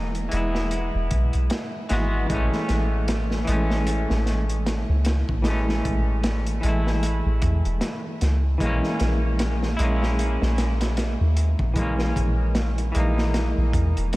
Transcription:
0.00 0.29 E1 medium
0.00 0.26 E3 medium
0.00 0.28 G#3 medium
0.00 0.29 B3 medium
0.00 0.30 D#4 medium
0.15 closed hi-hat soft
0.29 0.90 E1 medium
0.29 1.85 E3 medium
0.29 1.86 G#3 medium
0.29 closed hi-hat medium
0.34 1.88 B3 medium
0.34 1.89 E4 medium
0.55 snare soft
0.71 closed hi-hat medium
0.95 1.09 E1 medium
1.11 1.31 B1 medium
1.11 kick medium
1.11 closed hi-hat medium
1.33 1.49 B1 medium
1.33 closed hi-hat soft
1.50 snare loud
1.50 closed hi-hat medium
1.89 2.26 G#1 medium
1.89 2.25 E3 medium
1.89 2.26 G#3 medium
1.89 2.26 B3 medium
1.89 2.27 F#4 loud
1.89 snare soft
1.89 closed hi-hat medium
2.26 2.50 A1 medium
2.26 3.42 E3 medium
2.26 3.44 G#3 medium
2.26 kick medium
2.26 closed hi-hat medium
2.32 3.45 A3 medium
2.32 3.46 C#4 loud
2.52 snare soft
2.69 3.45 A1 medium
2.69 snare medium
2.69 closed hi-hat medium
3.08 snare loud
3.08 closed hi-hat medium
3.31 snare medium
3.45 4.06 A1 medium
3.45 5.40 E3 medium
3.45 5.41 G#3 medium
3.45 closed hi-hat medium
3.50 5.42 A3 medium
3.50 5.43 C#4 loud
3.70 snare medium
3.87 closed hi-hat medium
4.10 4.85 A1 medium
4.10 snare soft
4.26 snare soft
4.26 closed hi-hat medium
4.49 closed hi-hat soft
4.66 snare loud
4.66 closed hi-hat medium
4.89 5.23 C#2 medium
5.05 snare loud
5.05 closed hi-hat medium
5.29 5.82 A1 medium
5.29 kick medium
5.42 6.58 E3 medium
5.42 6.59 G#3 medium
5.42 snare loud
5.42 closed hi-hat medium
5.48 6.61 A3 medium
5.48 6.62 C#4 medium
5.69 snare soft
5.85 6.61 A1 medium
5.85 kick medium
5.85 closed hi-hat medium
6.24 snare loud
6.24 closed hi-hat medium
6.47 closed hi-hat soft
6.61 7.21 A1 medium
6.61 8.56 E3 medium
6.61 8.57 G#3 medium
6.61 closed hi-hat medium
6.66 8.58 A3 medium
6.66 8.59 E4 medium
6.87 snare soft
7.03 closed hi-hat medium
7.26 7.41 A1 loud
7.42 7.63 E2 medium
7.42 kick medium
7.42 closed hi-hat medium
7.65 7.80 E1 medium
7.65 closed hi-hat soft
7.81 snare loud
7.81 closed hi-hat medium
8.21 8.57 C#2 medium
8.21 snare soft
8.21 closed hi-hat medium
8.58 8.81 A#1 medium
8.58 9.74 E3 medium
8.58 9.75 G#3 medium
8.58 kick medium
8.58 closed hi-hat medium
8.63 9.76 A#3 medium
8.63 9.78 C#4 loud
8.83 snare soft
8.99 9.76 A#1 medium
8.99 snare medium
8.99 closed hi-hat medium
9.39 snare loud
9.39 closed hi-hat medium
9.63 snare medium
9.77 10.37 A#1 medium
9.77 11.73 G#3 medium
9.77 11.71 E4 medium
9.77 closed hi-hat medium
9.82 11.74 A#3 medium
9.82 11.75 C#4 loud
10.03 snare medium
10.19 closed hi-hat medium
10.42 11.16 A#1 medium
10.42 snare soft
10.58 snare loud
10.58 closed hi-hat medium
10.81 snare medium
10.81 closed hi-hat medium
10.97 snare loud
10.97 closed hi-hat medium
11.21 11.55 D#2 loud
11.37 closed hi-hat medium
11.59 12.13 A#1 medium
11.59 kick loud
11.74 12.90 E3 medium
11.74 12.91 G#3 medium
11.74 kick loud
11.74 closed hi-hat medium
11.79 12.92 A#3 medium
11.79 12.94 C#4 medium
11.99 snare soft
12.16 12.92 A#1 medium
12.16 kick medium
12.16 closed hi-hat medium
12.55 snare loud
12.55 closed hi-hat medium
12.78 closed hi-hat soft
12.92 13.53 A#1 medium
12.92 14.16 E3 medium
12.92 14.16 G#3 medium
12.92 closed hi-hat medium
12.97 14.16 A#3 medium
12.97 14.16 D#4 medium
13.18 snare medium
13.34 snare medium
13.34 closed hi-hat medium
13.57 13.72 A#1 medium
13.73 13.94 E2 medium
13.73 kick medium
13.73 closed hi-hat medium
13.97 14.12 E1 medium
13.97 closed hi-hat soft
14.13 closed hi-hat medium

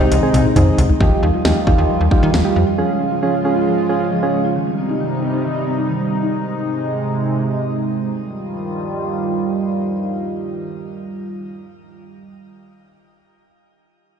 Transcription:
0.00 0.09 C2 medium
0.00 0.97 C3 medium
0.00 0.99 G#3 medium
0.00 0.52 D#4 medium
0.00 0.97 D#4 loud
0.12 0.20 C2 loud
0.12 0.18 D#3 medium
0.12 closed hi-hat medium
0.12 high tom medium
0.23 0.41 C4 medium
0.23 0.41 D#4 medium
0.23 0.41 G#4 loud
0.34 0.42 C2 loud
0.34 0.40 C4 medium
0.34 closed hi-hat medium
0.34 mid tom medium
0.45 0.52 D#4 medium
0.45 mid tom medium
0.56 0.64 C2 loud
0.56 0.63 D#3 medium
0.56 0.80 C4 medium
0.56 0.80 D#4 medium
0.56 0.80 G#4 loud
0.56 closed hi-hat medium
0.56 mid tom loud
0.78 0.86 C2 loud
0.78 0.85 C4 medium
0.78 closed hi-hat medium
0.78 floor tom loud
0.89 0.96 D#4 loud
0.89 floor tom loud
1.00 1.09 D#2 loud
1.00 2.77 D#3 medium
1.00 1.07 F3 medium
1.00 2.77 G3 medium
1.00 1.24 D#4 medium
1.00 1.24 F4 medium
1.00 2.77 F4 medium
1.00 1.24 G4 loud
1.00 kick loud
1.11 1.18 G3 medium
1.23 1.31 D#2 loud
1.23 1.29 D#4 medium
1.34 1.40 F4 medium
1.45 1.53 D#2 loud
1.45 1.51 F3 medium
1.45 1.57 D#4 medium
1.45 1.57 F4 medium
1.45 1.57 G4 medium
1.45 snare loud
1.67 1.75 D#2 medium
1.67 1.91 D#4 medium
1.67 1.74 D#4 medium
1.67 1.91 F4 medium
1.67 1.91 G4 loud
1.67 kick medium
1.78 1.86 D#2 loud
1.78 1.85 F4 medium
1.89 1.96 F3 medium
2.01 2.09 D#2 medium
2.11 2.29 D#4 medium
2.11 2.18 D#4 medium
2.11 2.29 F4 medium
2.11 2.29 G4 medium
2.11 kick medium
2.23 2.31 D#3 loud
2.23 2.29 F4 medium
2.34 2.42 D#2 loud
2.34 2.40 F3 medium
2.34 snare medium
2.45 2.51 G3 medium
2.45 2.63 D#4 medium
2.45 2.63 F4 medium
2.45 2.63 G4 loud
2.56 2.64 F2 medium
2.56 2.63 D#4 medium
2.67 2.74 F4 medium
2.78 4.54 C#3 medium
2.78 2.85 F3 medium
2.78 4.54 G#3 medium
2.78 3.02 C#4 medium
2.78 3.02 F4 medium
2.78 4.54 F4 medium
2.78 3.02 G#4 medium
2.89 2.96 G#3 medium
3.00 3.07 C#4 medium
3.11 3.18 F4 medium
3.22 3.29 F3 medium
3.22 3.35 C#4 medium
3.22 3.35 F4 medium
3.22 3.35 G#4 medium
3.45 3.51 C#4 medium
3.45 3.69 C#4 medium
3.45 3.69 F4 medium
3.45 3.69 G#4 loud
3.56 3.63 F4 medium
3.67 3.74 F3 medium
3.89 3.96 C#4 medium
3.89 4.07 C#4 medium
3.89 4.07 F4 medium
3.89 4.07 G#4 medium
4.00 4.07 F4 medium
4.11 4.18 F3 medium
4.23 4.41 C#4 medium
4.23 4.41 F4 medium
4.23 4.41 G#4 medium
4.34 4.40 C#4 medium
4.45 4.51 F4 medium
4.56 6.32 C3 medium
4.56 4.63 D#3 medium
4.56 6.32 G3 medium
4.56 8.08 D#4 medium
4.67 4.74 G3 medium
4.78 4.85 C4 medium
4.89 4.96 D#4 medium
5.00 5.07 D#3 medium
5.23 5.29 C4 medium
5.34 5.40 D#4 medium
5.45 5.51 D#3 medium
5.67 5.74 C4 medium
5.78 5.85 D#4 medium
5.89 5.96 D#3 medium
6.01 6.07 G3 medium
6.12 6.18 C4 medium
6.23 6.29 D#4 medium
6.34 8.10 C3 medium
6.34 8.10 G#3 medium
8.12 12.34 D#3 medium
8.12 12.34 G3 medium
8.12 12.33 F4 medium

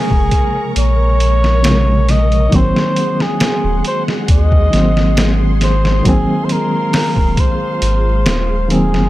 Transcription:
0.00 1.61 C3 loud
0.00 1.58 C#3 loud
0.00 1.59 F3 medium
0.00 1.60 G#3 medium
0.00 0.73 G#4 loud
0.00 2.49 A#4 medium
0.00 2.49 A#5 medium
0.00 2.49 C#6 medium
0.11 0.29 F1 loud
0.11 kick medium
0.31 kick medium
0.31 closed hi-hat medium
0.76 2.49 A#1 medium
0.76 2.12 C#5 loud
0.76 closed hi-hat medium
1.20 closed hi-hat medium
1.44 snare soft
1.62 2.48 C3 medium
1.62 2.47 C#3 medium
1.62 2.47 F3 medium
1.62 2.48 G#3 medium
1.62 snare loud
1.62 closed hi-hat medium
2.09 2.56 D#5 loud
2.09 snare soft
2.09 closed hi-hat medium
2.32 closed hi-hat soft
2.49 2.73 G#1 loud
2.49 4.66 D#3 loud
2.49 4.67 F#3 medium
2.49 9.09 G#4 medium
2.49 9.09 C6 medium
2.49 kick loud
2.49 closed hi-hat medium
2.53 4.69 A#3 medium
2.53 4.70 C4 loud
2.53 3.24 C5 loud
2.53 6.02 F#5 medium
2.76 snare medium
2.96 closed hi-hat medium
3.20 3.86 G#4 loud
3.20 snare soft
3.40 snare loud
3.40 closed hi-hat medium
3.64 3.82 D#1 loud
3.85 4.04 C5 loud
3.85 closed hi-hat medium
4.08 snare medium
4.28 4.68 D#2 medium
4.28 5.32 D#5 loud
4.28 kick loud
4.28 closed hi-hat medium
4.52 kick medium
4.70 6.02 G#1 loud
4.70 5.99 D#3 medium
4.70 6.00 F#3 medium
4.70 snare soft
4.70 closed hi-hat medium
4.74 6.01 A#3 medium
4.74 6.02 C4 medium
4.97 snare medium
5.17 snare loud
5.17 closed hi-hat loud
5.61 6.04 C5 loud
5.61 snare medium
5.61 closed hi-hat medium
5.85 snare medium
6.02 6.26 G#1 loud
6.02 8.64 D#3 medium
6.02 8.65 F#3 medium
6.02 9.09 F5 medium
6.02 kick loud
6.02 closed hi-hat medium
6.07 8.66 A#3 medium
6.07 8.67 C4 loud
6.07 6.46 G#4 loud
6.45 6.54 C5 medium
6.49 7.42 A#4 loud
6.49 closed hi-hat medium
6.93 snare loud
6.93 open hi-hat medium
7.17 7.35 D#1 loud
7.17 kick medium
7.37 8.71 C5 loud
7.37 kick loud
7.37 closed hi-hat medium
7.82 8.26 G#1 medium
7.82 closed hi-hat medium
8.26 8.95 D#1 medium
8.26 snare loud
8.26 closed hi-hat medium
8.68 9.09 D#3 medium
8.68 9.09 F#3 medium
8.68 9.09 A#3 medium
8.68 9.09 C4 loud
8.68 9.09 G#4 loud
8.68 closed hi-hat medium
8.94 9.09 F#1 loud
8.94 snare soft

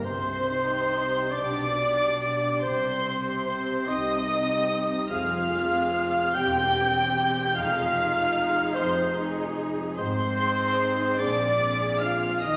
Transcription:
0.00 0.70 G4 medium
0.00 1.30 C5 medium
0.00 2.78 G5 medium
0.05 1.18 C2 medium
0.05 1.19 C3 medium
0.05 1.37 C3 medium
0.05 1.32 C4 medium
0.05 1.33 C5 loud
0.05 1.33 C6 loud
0.05 1.31 C6 loud
0.28 1.56 G3 medium
0.47 1.31 D#4 medium
0.47 0.92 D#4 medium
0.47 1.31 G4 medium
0.71 2.01 G4 medium
0.93 1.38 D#4 medium
1.14 1.38 D#5 medium
1.31 2.48 B1 medium
1.31 2.49 B2 medium
1.31 1.75 D4 medium
1.31 2.49 D4 medium
1.31 1.75 G4 medium
1.31 2.62 D5 medium
1.31 2.63 D5 loud
1.31 2.63 D6 medium
1.31 2.63 D6 loud
1.36 2.68 B2 medium
1.58 5.14 G3 medium
1.76 2.61 D4 medium
1.76 2.22 D4 medium
1.76 2.61 G4 medium
2.02 3.26 G4 medium
2.23 2.68 D4 medium
2.44 2.68 D5 medium
2.62 3.73 C2 medium
2.62 3.73 C3 medium
2.62 5.14 C3 medium
2.62 3.46 C4 medium
2.62 3.44 C5 medium
2.62 3.45 C5 medium
2.62 3.44 C6 loud
2.62 3.45 C6 loud
3.05 4.26 C4 medium
3.05 4.26 G4 medium
3.28 4.50 G4 medium
3.46 3.88 C4 medium
3.46 3.86 C5 medium
3.46 3.90 C5 medium
3.46 3.89 C6 medium
3.46 3.87 C6 medium
3.69 4.09 C6 medium
3.87 4.95 C2 medium
3.87 4.95 C3 medium
3.87 5.07 D#4 medium
3.87 5.07 D#5 loud
3.87 4.85 D#5 medium
3.87 5.14 G5 medium
3.87 4.85 D#6 medium
3.87 5.10 D#6 loud
4.10 8.00 C6 medium
4.28 5.07 C4 medium
4.28 5.08 G4 medium
4.28 4.69 C5 medium
4.51 5.14 G4 medium
4.70 5.71 C5 medium
4.90 8.80 C4 medium
5.08 6.20 F1 medium
5.08 6.38 F2 medium
5.08 6.20 F2 medium
5.08 5.49 C4 medium
5.08 6.35 F4 loud
5.08 5.48 G#4 medium
5.08 6.36 F5 loud
5.08 6.33 F5 loud
5.08 6.32 F6 loud
5.08 6.35 F6 loud
5.31 6.38 G#3 medium
5.49 6.32 C4 medium
5.49 6.38 D#4 medium
5.49 6.32 G#4 medium
5.72 6.95 C5 medium
5.94 6.38 G#4 medium
6.14 6.38 D#5 medium
6.34 7.42 E1 loud
6.34 7.59 E2 medium
6.34 7.42 E2 medium
6.34 6.73 C4 medium
6.34 6.74 G4 medium
6.34 7.56 G4 loud
6.34 7.55 G5 loud
6.34 7.56 G5 loud
6.34 7.55 G6 loud
6.34 7.56 G6 loud
6.56 7.59 G3 medium
6.75 7.54 C4 medium
6.75 7.59 E4 medium
6.75 7.54 G4 medium
6.97 8.17 C5 medium
7.17 7.60 G4 medium
7.38 7.60 E5 medium
7.55 8.62 F1 medium
7.55 8.62 F2 loud
7.55 10.01 F2 medium
7.55 7.95 D#4 medium
7.55 8.76 F4 loud
7.55 7.94 G#4 medium
7.55 8.75 F5 loud
7.55 8.76 F5 loud
7.55 8.78 F6 loud
7.55 8.76 F6 loud
7.78 9.75 G#3 medium
7.96 9.13 D#4 medium
7.96 9.55 D#4 medium
7.96 9.13 G#4 medium
8.18 9.35 C5 medium
8.37 9.14 G#4 medium
8.56 8.95 D#5 medium
8.74 9.83 F1 loud
8.74 9.83 F2 loud
8.74 9.14 C4 medium
8.74 9.15 C5 medium
8.74 9.15 C5 loud
8.74 9.16 C6 medium
8.74 9.15 C6 loud
8.74 12.46 C6 medium
8.96 10.99 D#5 medium
9.15 9.95 D#4 medium
9.15 10.78 G#4 medium
9.15 9.95 G#4 medium
9.36 10.57 C5 medium
9.56 10.37 D#4 medium
9.76 10.15 G#3 medium
9.96 11.05 G#1 medium
9.96 11.22 G#2 medium
9.96 11.06 G#2 loud
9.96 11.16 C4 loud
9.96 11.16 C5 loud
9.96 11.21 C5 loud
9.96 11.15 C6 loud
9.96 11.22 C6 loud
10.17 11.40 G#3 medium
10.38 11.23 D#4 medium
10.38 11.18 D#4 medium
10.38 11.18 G#4 medium
10.79 12.01 G#4 medium
11.01 11.23 D#5 medium
11.18 12.28 A#1 loud
11.18 12.28 A#2 loud
11.18 12.46 A#2 medium
11.18 11.58 C4 medium
11.18 12.00 D4 loud
11.18 11.57 G#4 medium
11.18 12.00 D5 loud
11.18 12.01 D5 medium
11.18 12.01 D6 loud
11.41 12.46 G#3 medium
11.59 12.40 C4 medium
11.59 12.46 C4 medium
11.59 12.40 G#4 medium
11.81 12.57 A#4 medium
11.99 12.43 F4 medium
11.99 12.46 G#4 medium
11.99 12.42 F5 medium
11.99 12.42 F5 loud
11.99 12.41 F6 medium
11.99 12.41 F6 loud
12.23 12.46 C5 medium
12.41 12.57 D#2 medium
12.41 12.57 D#3 medium
12.41 12.57 D#4 loud
12.41 12.57 D#5 loud
12.41 12.57 D#5 medium
12.41 12.57 D#6 loud

